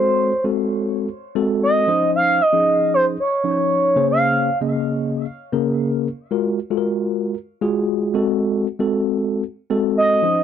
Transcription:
<<
  \new Staff \with { instrumentName = "Analog synth lead" } { \time 4/4 \key aes \mixolydian \tempo 4 = 115 c''8. r2 r16 ees''4 | f''8 ees''4 c''8 des''4.~ des''16 f''16~ | f''8. r2. r16 | r1 |
r2. ees''4 | }
  \new Staff \with { instrumentName = "Tine electric piano" } { \time 4/4 \key aes \mixolydian <aes c' ges' a'>8 r16 <aes c' ges' a'>4~ <aes c' ges' a'>16 r8 <aes c' ges' a'>4 <f des' ees' c''>8~ | <f des' ees' c''>8 r16 <f des' ees' aes'>4~ <f des' ees' aes'>16 r8 <f des' ees' des''>4 <des bes des' aes' c''>8~ | <des bes des' aes' c''>8 r16 <des bes des' aes' ees''>4~ <des bes des' aes' ees''>16 r8 <des bes des' aes' bes'>4 r8 | <aes f' ges' bes'>8 r16 <aes f' ges' a' bes'>4~ <aes f' ges' a' bes'>16 r8 <aes f' ges' aes'>4 <aes c' ges' a'>8~ |
<aes c' ges' a'>8 r16 <aes c' ges' a'>4~ <aes c' ges' a'>16 r8 <aes c' ges' a'>4 <f des' ees' c''>8 | }
>>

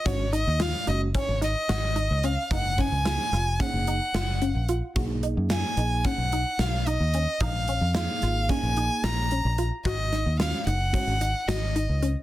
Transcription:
<<
  \new Staff \with { instrumentName = "Violin" } { \time 9/8 \key aes \dorian \tempo 4. = 74 des''8 ees''8 f''8 ees''8 des''8 ees''4. f''8 | ges''8 aes''4. ges''2 r8 | r4 aes''4 fis''4 f''8 dis''4 | f''4 f''4 aes''4 bes''4 r8 |
ees''4 f''8 ges''4. ees''4 r8 | }
  \new Staff \with { instrumentName = "Synth arpeggio sound" } { \time 9/8 \key aes \dorian ges'8 ees'8 f'8 ees'8 des'8 ees'8 ges'8 ees'8 des'8 | ees'8 des'8 f'8 f'8 des'8 ees'8 f'8 des'8 f'8 | fis'8 dis'8 f'8 dis'8 des'8 dis'8 fis'8 dis'8 des'8 | ees'8 des'8 f'8 f'8 des'8 ees'8 f'8 des'8 f'8 |
ges'8 ees'8 f'8 ees'8 des'8 ees'8 ges'8 ees'8 des'8 | }
  \new Staff \with { instrumentName = "Tine electric piano" } { \time 9/8 \key aes \dorian <aes des' ges'>8 r4 <aes des' ges'>8 r2 r8 | r4 <bes ees' aes'>8 r8 <bes ees' aes'>8 r4 f''4 | <ais dis' aes'>4. <ais dis' aes'>8 r2 r8 | r4 <bes ees' aes'>4 <bes ees' aes'>4. r4 |
r4 <aes des' ges'>8 r8 <aes des' ges'>8 r2 | }
  \new Staff \with { instrumentName = "Fingered electric bass" } { \clef bass \time 9/8 \key aes \dorian aes,,8. ees,8 r16 ges,,8 r16 aes,,8 r16 aes,,8. des,8 r16 | ges,,8. des,8 r16 f,,8 r16 ges,,8 r16 ges,,8. bes,,8 r16 | b,,8. fis,8 r16 ais,,8 r16 b,,8 r16 b,,8. dis,8 r16 | bes,,8. f,8 r16 aes,,8 r16 bes,,8 r16 bes,,8. bes,,8 r16 |
aes,,8. ees,8 r16 ges,,8 r16 aes,,8 r16 aes,,8. des,8 r16 | }
  \new DrumStaff \with { instrumentName = "Drums" } \drummode { \time 9/8 <hh bd>8 hh8 <hh sn>8 hh8 <hh bd>8 <hh sn>8 <hh sn>8 hh8 hh8 | <hh bd>8 <hh bd>8 <hh sn>8 <hh sn>8 <hh bd>8 hh8 <hh sn>8 hh8 hh8 | <hh bd>8 hh8 <hh sn>8 hh8 <hh bd>8 hh8 <hh sn>8 hh8 hh8 | <hh bd>8 hh8 <hh sn>8 <hh sn>8 <hh bd>8 hh8 <hh sn>8 hh8 hh8 |
<hh bd>8 <hh sn>8 <hh sn>8 hh8 <hh bd>8 hh8 <hh sn>8 hh8 hh8 | }
>>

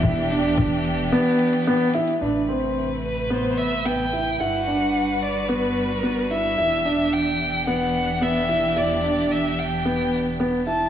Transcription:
<<
  \new Staff \with { instrumentName = "Violin" } { \time 4/4 \key e \minor \tempo 4 = 110 r1 | r4. b'8 c''8 e''8 g''4 | fis''4. d''8 b'4. e''8~ | e''4 g''4 fis''4 e''4 |
d''4 e''8 g''4 r4 a''8 | }
  \new Staff \with { instrumentName = "Grand piano" } { \time 4/4 \key e \minor e'8 d'4 r8 b4 b8 e'8 | d'8 c'4 r8 b4 b8 e'8 | e'8 d'4 r8 b4 b8 e'8 | e'8 d'4 r8 b4 b8 e'8 |
e'8 d'4 r8 b4 b8 e'8 | }
  \new Staff \with { instrumentName = "String quartet" } { \time 4/4 \key e \minor <e b d' g'>1 | <c a b'>1 | <g d' fis' b'>1 | <e b g'>1~ |
<e b g'>1 | }
  \new Staff \with { instrumentName = "Detuned saw bass" } { \clef bass \time 4/4 \key e \minor e,,2 r2 | a,,1 | g,,1 | e,,1~ |
e,,1 | }
  \new DrumStaff \with { instrumentName = "Drums" } \drummode { \time 4/4 <hh bd>8 hh16 hh16 <hh bd>8 hh16 hh16 hh8 hh16 hh16 hh8 hh16 hh16 | r4 r4 r4 r4 | r4 r4 r4 r4 | r4 r4 r4 r4 |
r4 r4 r4 r4 | }
>>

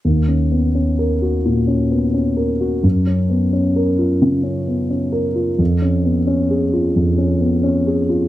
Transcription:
\new Staff \with { instrumentName = "Grand piano" } { \time 4/4 \key dis \minor \tempo 4 = 87 \tuplet 3/2 { dis,8 cis'8 b8 cis'8 ais'8 fis'8 ais,8 cis'8 b8 cis'8 ais'8 fis'8 } | \tuplet 3/2 { fis,8 cis'8 b8 cis'8 ais'8 eis'8 cis8 cis'8 b8 cis'8 ais'8 eis'8 } | \tuplet 3/2 { eis,8 cis'8 b8 cis'8 gis'8 eis'8 eis,8 cis'8 b8 cis'8 gis'8 eis'8 } | }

